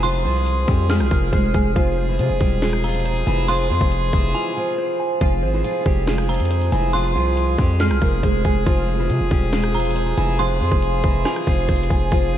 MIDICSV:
0, 0, Header, 1, 7, 480
1, 0, Start_track
1, 0, Key_signature, -4, "minor"
1, 0, Tempo, 431655
1, 36, Time_signature, 4, 2, 24, 8
1, 13764, End_track
2, 0, Start_track
2, 0, Title_t, "Synth bell"
2, 0, Program_c, 0, 98
2, 33, Note_on_c, 0, 84, 112
2, 950, Note_off_c, 0, 84, 0
2, 1001, Note_on_c, 0, 89, 88
2, 1914, Note_off_c, 0, 89, 0
2, 3158, Note_on_c, 0, 82, 73
2, 3385, Note_off_c, 0, 82, 0
2, 3874, Note_on_c, 0, 84, 115
2, 4790, Note_off_c, 0, 84, 0
2, 4832, Note_on_c, 0, 80, 84
2, 5749, Note_off_c, 0, 80, 0
2, 6994, Note_on_c, 0, 82, 80
2, 7223, Note_off_c, 0, 82, 0
2, 7709, Note_on_c, 0, 84, 110
2, 8628, Note_off_c, 0, 84, 0
2, 8680, Note_on_c, 0, 89, 90
2, 9593, Note_off_c, 0, 89, 0
2, 10837, Note_on_c, 0, 82, 73
2, 11065, Note_off_c, 0, 82, 0
2, 11555, Note_on_c, 0, 84, 108
2, 12471, Note_off_c, 0, 84, 0
2, 12512, Note_on_c, 0, 80, 84
2, 13429, Note_off_c, 0, 80, 0
2, 13764, End_track
3, 0, Start_track
3, 0, Title_t, "Clean electric guitar"
3, 0, Program_c, 1, 27
3, 0, Note_on_c, 1, 72, 87
3, 0, Note_on_c, 1, 80, 87
3, 36, Note_on_c, 1, 65, 100
3, 263, Note_off_c, 1, 72, 0
3, 277, Note_on_c, 1, 72, 83
3, 983, Note_off_c, 1, 65, 0
3, 996, Note_off_c, 1, 80, 0
3, 996, Note_on_c, 1, 65, 92
3, 1462, Note_off_c, 1, 72, 0
3, 1476, Note_on_c, 1, 72, 88
3, 1716, Note_on_c, 1, 80, 81
3, 1943, Note_off_c, 1, 65, 0
3, 1956, Note_off_c, 1, 72, 0
3, 1956, Note_off_c, 1, 80, 0
3, 1956, Note_on_c, 1, 65, 92
3, 2196, Note_on_c, 1, 72, 78
3, 2903, Note_off_c, 1, 65, 0
3, 2916, Note_on_c, 1, 65, 87
3, 3383, Note_off_c, 1, 72, 0
3, 3396, Note_on_c, 1, 72, 90
3, 3637, Note_on_c, 1, 80, 84
3, 3876, Note_on_c, 1, 68, 102
3, 4103, Note_off_c, 1, 72, 0
3, 4116, Note_off_c, 1, 65, 0
3, 4117, Note_on_c, 1, 72, 82
3, 4836, Note_off_c, 1, 80, 0
3, 4837, Note_on_c, 1, 65, 87
3, 5076, Note_off_c, 1, 68, 0
3, 5303, Note_off_c, 1, 72, 0
3, 5317, Note_on_c, 1, 72, 90
3, 5557, Note_on_c, 1, 80, 84
3, 5783, Note_off_c, 1, 65, 0
3, 5796, Note_off_c, 1, 72, 0
3, 5796, Note_off_c, 1, 80, 0
3, 5797, Note_on_c, 1, 65, 90
3, 6036, Note_on_c, 1, 72, 84
3, 6743, Note_off_c, 1, 65, 0
3, 6756, Note_on_c, 1, 65, 84
3, 7223, Note_off_c, 1, 72, 0
3, 7236, Note_on_c, 1, 72, 85
3, 7475, Note_on_c, 1, 80, 90
3, 7703, Note_off_c, 1, 65, 0
3, 7716, Note_on_c, 1, 65, 97
3, 7942, Note_off_c, 1, 72, 0
3, 7955, Note_on_c, 1, 72, 80
3, 8661, Note_off_c, 1, 65, 0
3, 8674, Note_on_c, 1, 65, 92
3, 8675, Note_off_c, 1, 80, 0
3, 9142, Note_off_c, 1, 72, 0
3, 9155, Note_on_c, 1, 72, 88
3, 9394, Note_on_c, 1, 80, 83
3, 9621, Note_off_c, 1, 65, 0
3, 9634, Note_on_c, 1, 65, 93
3, 9635, Note_off_c, 1, 72, 0
3, 9635, Note_off_c, 1, 80, 0
3, 9874, Note_on_c, 1, 72, 82
3, 10581, Note_off_c, 1, 65, 0
3, 10595, Note_on_c, 1, 65, 87
3, 11062, Note_off_c, 1, 72, 0
3, 11075, Note_on_c, 1, 72, 90
3, 11316, Note_on_c, 1, 80, 83
3, 11557, Note_on_c, 1, 68, 106
3, 11783, Note_off_c, 1, 72, 0
3, 11795, Note_off_c, 1, 65, 0
3, 11797, Note_on_c, 1, 72, 81
3, 12516, Note_off_c, 1, 80, 0
3, 12516, Note_on_c, 1, 65, 87
3, 12756, Note_off_c, 1, 68, 0
3, 12983, Note_off_c, 1, 72, 0
3, 12996, Note_on_c, 1, 72, 92
3, 13237, Note_on_c, 1, 80, 81
3, 13463, Note_off_c, 1, 65, 0
3, 13476, Note_off_c, 1, 72, 0
3, 13476, Note_off_c, 1, 80, 0
3, 13476, Note_on_c, 1, 65, 88
3, 13716, Note_on_c, 1, 72, 83
3, 13764, Note_off_c, 1, 65, 0
3, 13764, Note_off_c, 1, 72, 0
3, 13764, End_track
4, 0, Start_track
4, 0, Title_t, "Steel-string acoustic guitar"
4, 0, Program_c, 2, 25
4, 40, Note_on_c, 2, 65, 108
4, 48, Note_on_c, 2, 53, 84
4, 262, Note_off_c, 2, 65, 0
4, 267, Note_off_c, 2, 53, 0
4, 274, Note_on_c, 2, 65, 89
4, 283, Note_on_c, 2, 53, 66
4, 726, Note_off_c, 2, 65, 0
4, 731, Note_off_c, 2, 53, 0
4, 762, Note_on_c, 2, 67, 88
4, 771, Note_on_c, 2, 55, 73
4, 984, Note_off_c, 2, 67, 0
4, 988, Note_off_c, 2, 55, 0
4, 999, Note_on_c, 2, 68, 98
4, 1008, Note_on_c, 2, 56, 74
4, 1222, Note_off_c, 2, 68, 0
4, 1227, Note_off_c, 2, 56, 0
4, 1237, Note_on_c, 2, 70, 90
4, 1246, Note_on_c, 2, 58, 64
4, 1461, Note_off_c, 2, 70, 0
4, 1465, Note_off_c, 2, 58, 0
4, 1483, Note_on_c, 2, 68, 89
4, 1492, Note_on_c, 2, 56, 73
4, 1704, Note_off_c, 2, 68, 0
4, 1709, Note_off_c, 2, 56, 0
4, 1720, Note_on_c, 2, 68, 82
4, 1728, Note_on_c, 2, 56, 62
4, 1942, Note_off_c, 2, 68, 0
4, 1947, Note_off_c, 2, 56, 0
4, 1957, Note_on_c, 2, 65, 106
4, 1966, Note_on_c, 2, 53, 90
4, 2295, Note_off_c, 2, 65, 0
4, 2299, Note_off_c, 2, 53, 0
4, 2318, Note_on_c, 2, 64, 80
4, 2326, Note_on_c, 2, 52, 57
4, 2429, Note_off_c, 2, 64, 0
4, 2433, Note_off_c, 2, 52, 0
4, 2435, Note_on_c, 2, 65, 78
4, 2444, Note_on_c, 2, 53, 70
4, 2660, Note_off_c, 2, 65, 0
4, 2665, Note_off_c, 2, 53, 0
4, 2681, Note_on_c, 2, 67, 81
4, 2690, Note_on_c, 2, 55, 60
4, 2903, Note_off_c, 2, 67, 0
4, 2908, Note_off_c, 2, 55, 0
4, 2921, Note_on_c, 2, 68, 83
4, 2931, Note_on_c, 2, 56, 59
4, 3143, Note_off_c, 2, 68, 0
4, 3148, Note_off_c, 2, 56, 0
4, 3154, Note_on_c, 2, 65, 81
4, 3163, Note_on_c, 2, 53, 65
4, 3606, Note_off_c, 2, 65, 0
4, 3611, Note_off_c, 2, 53, 0
4, 3641, Note_on_c, 2, 64, 86
4, 3651, Note_on_c, 2, 52, 65
4, 3863, Note_off_c, 2, 64, 0
4, 3868, Note_off_c, 2, 52, 0
4, 3874, Note_on_c, 2, 65, 110
4, 3883, Note_on_c, 2, 53, 92
4, 4099, Note_off_c, 2, 65, 0
4, 4104, Note_off_c, 2, 53, 0
4, 4113, Note_on_c, 2, 65, 76
4, 4121, Note_on_c, 2, 53, 65
4, 4565, Note_off_c, 2, 65, 0
4, 4570, Note_off_c, 2, 53, 0
4, 4598, Note_on_c, 2, 64, 79
4, 4607, Note_on_c, 2, 52, 68
4, 5048, Note_off_c, 2, 64, 0
4, 5053, Note_off_c, 2, 52, 0
4, 5073, Note_on_c, 2, 65, 76
4, 5082, Note_on_c, 2, 53, 65
4, 5751, Note_off_c, 2, 65, 0
4, 5756, Note_off_c, 2, 53, 0
4, 5796, Note_on_c, 2, 65, 105
4, 5804, Note_on_c, 2, 53, 89
4, 6134, Note_off_c, 2, 65, 0
4, 6139, Note_off_c, 2, 53, 0
4, 6152, Note_on_c, 2, 64, 72
4, 6160, Note_on_c, 2, 52, 59
4, 6266, Note_off_c, 2, 64, 0
4, 6270, Note_off_c, 2, 52, 0
4, 6273, Note_on_c, 2, 65, 91
4, 6282, Note_on_c, 2, 53, 70
4, 6499, Note_off_c, 2, 65, 0
4, 6503, Note_off_c, 2, 53, 0
4, 6513, Note_on_c, 2, 67, 74
4, 6521, Note_on_c, 2, 55, 65
4, 6739, Note_off_c, 2, 67, 0
4, 6743, Note_off_c, 2, 55, 0
4, 6763, Note_on_c, 2, 68, 85
4, 6770, Note_on_c, 2, 56, 62
4, 6984, Note_off_c, 2, 68, 0
4, 6988, Note_off_c, 2, 56, 0
4, 6994, Note_on_c, 2, 65, 81
4, 7003, Note_on_c, 2, 53, 64
4, 7446, Note_off_c, 2, 65, 0
4, 7451, Note_off_c, 2, 53, 0
4, 7476, Note_on_c, 2, 64, 91
4, 7485, Note_on_c, 2, 52, 64
4, 7700, Note_off_c, 2, 64, 0
4, 7705, Note_off_c, 2, 52, 0
4, 7721, Note_on_c, 2, 65, 104
4, 7731, Note_on_c, 2, 53, 83
4, 7940, Note_off_c, 2, 65, 0
4, 7948, Note_off_c, 2, 53, 0
4, 7953, Note_on_c, 2, 65, 89
4, 7963, Note_on_c, 2, 53, 66
4, 8406, Note_off_c, 2, 65, 0
4, 8411, Note_off_c, 2, 53, 0
4, 8441, Note_on_c, 2, 67, 90
4, 8451, Note_on_c, 2, 55, 73
4, 8663, Note_off_c, 2, 67, 0
4, 8668, Note_off_c, 2, 55, 0
4, 8677, Note_on_c, 2, 68, 99
4, 8686, Note_on_c, 2, 56, 75
4, 8901, Note_off_c, 2, 68, 0
4, 8906, Note_off_c, 2, 56, 0
4, 8915, Note_on_c, 2, 70, 91
4, 8925, Note_on_c, 2, 58, 64
4, 9140, Note_off_c, 2, 70, 0
4, 9145, Note_off_c, 2, 58, 0
4, 9161, Note_on_c, 2, 68, 91
4, 9169, Note_on_c, 2, 56, 72
4, 9383, Note_off_c, 2, 68, 0
4, 9387, Note_off_c, 2, 56, 0
4, 9395, Note_on_c, 2, 68, 84
4, 9404, Note_on_c, 2, 56, 66
4, 9620, Note_off_c, 2, 68, 0
4, 9625, Note_off_c, 2, 56, 0
4, 9634, Note_on_c, 2, 65, 106
4, 9643, Note_on_c, 2, 53, 86
4, 9973, Note_off_c, 2, 65, 0
4, 9978, Note_off_c, 2, 53, 0
4, 9995, Note_on_c, 2, 64, 80
4, 10003, Note_on_c, 2, 52, 58
4, 10108, Note_off_c, 2, 64, 0
4, 10112, Note_off_c, 2, 52, 0
4, 10113, Note_on_c, 2, 65, 82
4, 10122, Note_on_c, 2, 53, 67
4, 10339, Note_off_c, 2, 65, 0
4, 10343, Note_off_c, 2, 53, 0
4, 10357, Note_on_c, 2, 67, 81
4, 10367, Note_on_c, 2, 55, 62
4, 10581, Note_off_c, 2, 67, 0
4, 10586, Note_off_c, 2, 55, 0
4, 10600, Note_on_c, 2, 68, 84
4, 10609, Note_on_c, 2, 56, 61
4, 10823, Note_off_c, 2, 68, 0
4, 10827, Note_off_c, 2, 56, 0
4, 10832, Note_on_c, 2, 65, 77
4, 10841, Note_on_c, 2, 53, 65
4, 11285, Note_off_c, 2, 65, 0
4, 11290, Note_off_c, 2, 53, 0
4, 11319, Note_on_c, 2, 64, 89
4, 11328, Note_on_c, 2, 52, 67
4, 11542, Note_off_c, 2, 64, 0
4, 11547, Note_off_c, 2, 52, 0
4, 11554, Note_on_c, 2, 65, 107
4, 11564, Note_on_c, 2, 53, 90
4, 11779, Note_off_c, 2, 65, 0
4, 11784, Note_off_c, 2, 53, 0
4, 11793, Note_on_c, 2, 65, 75
4, 11801, Note_on_c, 2, 53, 70
4, 12245, Note_off_c, 2, 65, 0
4, 12250, Note_off_c, 2, 53, 0
4, 12279, Note_on_c, 2, 64, 79
4, 12287, Note_on_c, 2, 52, 67
4, 12728, Note_off_c, 2, 64, 0
4, 12733, Note_off_c, 2, 52, 0
4, 12754, Note_on_c, 2, 65, 78
4, 12763, Note_on_c, 2, 53, 64
4, 13432, Note_off_c, 2, 65, 0
4, 13436, Note_off_c, 2, 53, 0
4, 13476, Note_on_c, 2, 65, 106
4, 13486, Note_on_c, 2, 53, 90
4, 13764, Note_off_c, 2, 53, 0
4, 13764, Note_off_c, 2, 65, 0
4, 13764, End_track
5, 0, Start_track
5, 0, Title_t, "Brass ensemble"
5, 0, Program_c, 3, 61
5, 0, Note_on_c, 3, 48, 81
5, 0, Note_on_c, 3, 56, 76
5, 0, Note_on_c, 3, 68, 90
5, 1912, Note_off_c, 3, 48, 0
5, 1912, Note_off_c, 3, 56, 0
5, 1912, Note_off_c, 3, 68, 0
5, 1958, Note_on_c, 3, 48, 83
5, 1958, Note_on_c, 3, 56, 76
5, 1959, Note_on_c, 3, 68, 95
5, 5606, Note_off_c, 3, 48, 0
5, 5606, Note_off_c, 3, 56, 0
5, 5606, Note_off_c, 3, 68, 0
5, 5795, Note_on_c, 3, 56, 77
5, 5796, Note_on_c, 3, 48, 80
5, 5796, Note_on_c, 3, 68, 93
5, 13431, Note_off_c, 3, 56, 0
5, 13475, Note_on_c, 3, 56, 74
5, 13764, Note_off_c, 3, 48, 0
5, 13764, Note_off_c, 3, 56, 0
5, 13764, Note_off_c, 3, 68, 0
5, 13764, End_track
6, 0, Start_track
6, 0, Title_t, "808-style bass"
6, 0, Program_c, 4, 38
6, 0, Note_on_c, 4, 29, 108
6, 276, Note_on_c, 4, 36, 99
6, 293, Note_off_c, 4, 29, 0
6, 732, Note_off_c, 4, 36, 0
6, 755, Note_on_c, 4, 41, 107
6, 1117, Note_on_c, 4, 36, 106
6, 1133, Note_off_c, 4, 41, 0
6, 1230, Note_off_c, 4, 36, 0
6, 1237, Note_on_c, 4, 29, 110
6, 1467, Note_off_c, 4, 29, 0
6, 1476, Note_on_c, 4, 29, 108
6, 1706, Note_off_c, 4, 29, 0
6, 1717, Note_on_c, 4, 29, 103
6, 1947, Note_off_c, 4, 29, 0
6, 1957, Note_on_c, 4, 29, 107
6, 2435, Note_on_c, 4, 48, 103
6, 2452, Note_off_c, 4, 29, 0
6, 2556, Note_on_c, 4, 29, 100
6, 2572, Note_off_c, 4, 48, 0
6, 2670, Note_off_c, 4, 29, 0
6, 2676, Note_on_c, 4, 28, 107
6, 3597, Note_off_c, 4, 28, 0
6, 3635, Note_on_c, 4, 29, 104
6, 4115, Note_on_c, 4, 41, 97
6, 4132, Note_off_c, 4, 29, 0
6, 4229, Note_off_c, 4, 41, 0
6, 4235, Note_on_c, 4, 29, 103
6, 4581, Note_off_c, 4, 29, 0
6, 4594, Note_on_c, 4, 29, 107
6, 4825, Note_off_c, 4, 29, 0
6, 5795, Note_on_c, 4, 29, 105
6, 6035, Note_on_c, 4, 32, 98
6, 6052, Note_off_c, 4, 29, 0
6, 6263, Note_off_c, 4, 32, 0
6, 6515, Note_on_c, 4, 29, 112
6, 7116, Note_on_c, 4, 41, 102
6, 7132, Note_off_c, 4, 29, 0
6, 7458, Note_off_c, 4, 41, 0
6, 7476, Note_on_c, 4, 29, 109
6, 7955, Note_on_c, 4, 36, 101
6, 7972, Note_off_c, 4, 29, 0
6, 8411, Note_off_c, 4, 36, 0
6, 8434, Note_on_c, 4, 41, 110
6, 8796, Note_on_c, 4, 36, 101
6, 8812, Note_off_c, 4, 41, 0
6, 8910, Note_off_c, 4, 36, 0
6, 8915, Note_on_c, 4, 29, 109
6, 9146, Note_off_c, 4, 29, 0
6, 9154, Note_on_c, 4, 29, 101
6, 9385, Note_off_c, 4, 29, 0
6, 9395, Note_on_c, 4, 29, 105
6, 9626, Note_off_c, 4, 29, 0
6, 9635, Note_on_c, 4, 29, 109
6, 10114, Note_on_c, 4, 48, 101
6, 10131, Note_off_c, 4, 29, 0
6, 10234, Note_on_c, 4, 29, 100
6, 10251, Note_off_c, 4, 48, 0
6, 10349, Note_off_c, 4, 29, 0
6, 10354, Note_on_c, 4, 28, 105
6, 11277, Note_off_c, 4, 28, 0
6, 11315, Note_on_c, 4, 29, 111
6, 11795, Note_on_c, 4, 41, 99
6, 11812, Note_off_c, 4, 29, 0
6, 11909, Note_off_c, 4, 41, 0
6, 11916, Note_on_c, 4, 29, 103
6, 12261, Note_off_c, 4, 29, 0
6, 12274, Note_on_c, 4, 29, 108
6, 12505, Note_off_c, 4, 29, 0
6, 12756, Note_on_c, 4, 29, 110
6, 12986, Note_off_c, 4, 29, 0
6, 12996, Note_on_c, 4, 29, 104
6, 13226, Note_off_c, 4, 29, 0
6, 13236, Note_on_c, 4, 29, 105
6, 13466, Note_off_c, 4, 29, 0
6, 13476, Note_on_c, 4, 29, 111
6, 13716, Note_on_c, 4, 32, 101
6, 13732, Note_off_c, 4, 29, 0
6, 13764, Note_off_c, 4, 32, 0
6, 13764, End_track
7, 0, Start_track
7, 0, Title_t, "Drums"
7, 35, Note_on_c, 9, 42, 80
7, 146, Note_off_c, 9, 42, 0
7, 516, Note_on_c, 9, 42, 80
7, 628, Note_off_c, 9, 42, 0
7, 755, Note_on_c, 9, 36, 95
7, 866, Note_off_c, 9, 36, 0
7, 996, Note_on_c, 9, 38, 125
7, 997, Note_on_c, 9, 42, 74
7, 1108, Note_off_c, 9, 38, 0
7, 1108, Note_off_c, 9, 42, 0
7, 1116, Note_on_c, 9, 37, 100
7, 1227, Note_off_c, 9, 37, 0
7, 1237, Note_on_c, 9, 36, 94
7, 1348, Note_off_c, 9, 36, 0
7, 1476, Note_on_c, 9, 36, 85
7, 1479, Note_on_c, 9, 42, 84
7, 1587, Note_off_c, 9, 36, 0
7, 1590, Note_off_c, 9, 42, 0
7, 1717, Note_on_c, 9, 36, 95
7, 1717, Note_on_c, 9, 42, 90
7, 1828, Note_off_c, 9, 36, 0
7, 1828, Note_off_c, 9, 42, 0
7, 1957, Note_on_c, 9, 36, 120
7, 1958, Note_on_c, 9, 42, 84
7, 2068, Note_off_c, 9, 36, 0
7, 2069, Note_off_c, 9, 42, 0
7, 2438, Note_on_c, 9, 42, 79
7, 2549, Note_off_c, 9, 42, 0
7, 2675, Note_on_c, 9, 36, 97
7, 2787, Note_off_c, 9, 36, 0
7, 2916, Note_on_c, 9, 38, 124
7, 2917, Note_on_c, 9, 42, 72
7, 3027, Note_off_c, 9, 38, 0
7, 3028, Note_off_c, 9, 42, 0
7, 3036, Note_on_c, 9, 37, 99
7, 3147, Note_off_c, 9, 37, 0
7, 3157, Note_on_c, 9, 42, 70
7, 3217, Note_off_c, 9, 42, 0
7, 3217, Note_on_c, 9, 42, 70
7, 3276, Note_off_c, 9, 42, 0
7, 3276, Note_on_c, 9, 42, 65
7, 3337, Note_off_c, 9, 42, 0
7, 3337, Note_on_c, 9, 42, 66
7, 3397, Note_off_c, 9, 42, 0
7, 3397, Note_on_c, 9, 42, 86
7, 3508, Note_off_c, 9, 42, 0
7, 3517, Note_on_c, 9, 42, 49
7, 3628, Note_off_c, 9, 42, 0
7, 3636, Note_on_c, 9, 42, 91
7, 3748, Note_off_c, 9, 42, 0
7, 3875, Note_on_c, 9, 42, 81
7, 3986, Note_off_c, 9, 42, 0
7, 4235, Note_on_c, 9, 36, 93
7, 4347, Note_off_c, 9, 36, 0
7, 4355, Note_on_c, 9, 42, 81
7, 4467, Note_off_c, 9, 42, 0
7, 4594, Note_on_c, 9, 36, 98
7, 4706, Note_off_c, 9, 36, 0
7, 5795, Note_on_c, 9, 36, 120
7, 5795, Note_on_c, 9, 42, 84
7, 5906, Note_off_c, 9, 36, 0
7, 5906, Note_off_c, 9, 42, 0
7, 6275, Note_on_c, 9, 42, 81
7, 6386, Note_off_c, 9, 42, 0
7, 6515, Note_on_c, 9, 36, 97
7, 6626, Note_off_c, 9, 36, 0
7, 6754, Note_on_c, 9, 38, 127
7, 6755, Note_on_c, 9, 42, 74
7, 6866, Note_off_c, 9, 38, 0
7, 6866, Note_off_c, 9, 42, 0
7, 6874, Note_on_c, 9, 37, 103
7, 6985, Note_off_c, 9, 37, 0
7, 6995, Note_on_c, 9, 42, 71
7, 7055, Note_off_c, 9, 42, 0
7, 7055, Note_on_c, 9, 42, 72
7, 7115, Note_off_c, 9, 42, 0
7, 7115, Note_on_c, 9, 42, 67
7, 7176, Note_off_c, 9, 42, 0
7, 7176, Note_on_c, 9, 42, 70
7, 7236, Note_off_c, 9, 42, 0
7, 7236, Note_on_c, 9, 42, 86
7, 7347, Note_off_c, 9, 42, 0
7, 7356, Note_on_c, 9, 42, 51
7, 7467, Note_off_c, 9, 42, 0
7, 7475, Note_on_c, 9, 42, 92
7, 7586, Note_off_c, 9, 42, 0
7, 7715, Note_on_c, 9, 42, 83
7, 7826, Note_off_c, 9, 42, 0
7, 8195, Note_on_c, 9, 42, 81
7, 8307, Note_off_c, 9, 42, 0
7, 8434, Note_on_c, 9, 36, 98
7, 8545, Note_off_c, 9, 36, 0
7, 8673, Note_on_c, 9, 38, 125
7, 8674, Note_on_c, 9, 42, 72
7, 8785, Note_off_c, 9, 38, 0
7, 8785, Note_off_c, 9, 42, 0
7, 8794, Note_on_c, 9, 37, 97
7, 8905, Note_off_c, 9, 37, 0
7, 8915, Note_on_c, 9, 36, 94
7, 9026, Note_off_c, 9, 36, 0
7, 9154, Note_on_c, 9, 36, 83
7, 9157, Note_on_c, 9, 42, 83
7, 9266, Note_off_c, 9, 36, 0
7, 9269, Note_off_c, 9, 42, 0
7, 9395, Note_on_c, 9, 36, 95
7, 9395, Note_on_c, 9, 42, 90
7, 9506, Note_off_c, 9, 36, 0
7, 9506, Note_off_c, 9, 42, 0
7, 9635, Note_on_c, 9, 36, 126
7, 9635, Note_on_c, 9, 42, 82
7, 9746, Note_off_c, 9, 36, 0
7, 9746, Note_off_c, 9, 42, 0
7, 10116, Note_on_c, 9, 42, 81
7, 10227, Note_off_c, 9, 42, 0
7, 10354, Note_on_c, 9, 36, 94
7, 10466, Note_off_c, 9, 36, 0
7, 10595, Note_on_c, 9, 38, 127
7, 10596, Note_on_c, 9, 42, 74
7, 10706, Note_off_c, 9, 38, 0
7, 10707, Note_off_c, 9, 42, 0
7, 10715, Note_on_c, 9, 37, 97
7, 10826, Note_off_c, 9, 37, 0
7, 10835, Note_on_c, 9, 42, 71
7, 10896, Note_off_c, 9, 42, 0
7, 10896, Note_on_c, 9, 42, 72
7, 10955, Note_off_c, 9, 42, 0
7, 10955, Note_on_c, 9, 42, 69
7, 11016, Note_off_c, 9, 42, 0
7, 11016, Note_on_c, 9, 42, 67
7, 11076, Note_off_c, 9, 42, 0
7, 11076, Note_on_c, 9, 42, 84
7, 11187, Note_off_c, 9, 42, 0
7, 11196, Note_on_c, 9, 42, 50
7, 11307, Note_off_c, 9, 42, 0
7, 11315, Note_on_c, 9, 42, 91
7, 11427, Note_off_c, 9, 42, 0
7, 11555, Note_on_c, 9, 42, 81
7, 11667, Note_off_c, 9, 42, 0
7, 11916, Note_on_c, 9, 36, 95
7, 12027, Note_off_c, 9, 36, 0
7, 12036, Note_on_c, 9, 42, 84
7, 12147, Note_off_c, 9, 42, 0
7, 12274, Note_on_c, 9, 36, 98
7, 12385, Note_off_c, 9, 36, 0
7, 12515, Note_on_c, 9, 37, 76
7, 12515, Note_on_c, 9, 38, 124
7, 12516, Note_on_c, 9, 42, 74
7, 12626, Note_off_c, 9, 37, 0
7, 12626, Note_off_c, 9, 38, 0
7, 12627, Note_off_c, 9, 42, 0
7, 12635, Note_on_c, 9, 37, 96
7, 12746, Note_off_c, 9, 37, 0
7, 12756, Note_on_c, 9, 36, 92
7, 12867, Note_off_c, 9, 36, 0
7, 12995, Note_on_c, 9, 36, 86
7, 12997, Note_on_c, 9, 42, 72
7, 13077, Note_off_c, 9, 42, 0
7, 13077, Note_on_c, 9, 42, 68
7, 13106, Note_off_c, 9, 36, 0
7, 13158, Note_off_c, 9, 42, 0
7, 13158, Note_on_c, 9, 42, 70
7, 13236, Note_on_c, 9, 36, 94
7, 13237, Note_off_c, 9, 42, 0
7, 13237, Note_on_c, 9, 42, 89
7, 13347, Note_off_c, 9, 36, 0
7, 13348, Note_off_c, 9, 42, 0
7, 13476, Note_on_c, 9, 36, 120
7, 13476, Note_on_c, 9, 42, 85
7, 13587, Note_off_c, 9, 36, 0
7, 13587, Note_off_c, 9, 42, 0
7, 13764, End_track
0, 0, End_of_file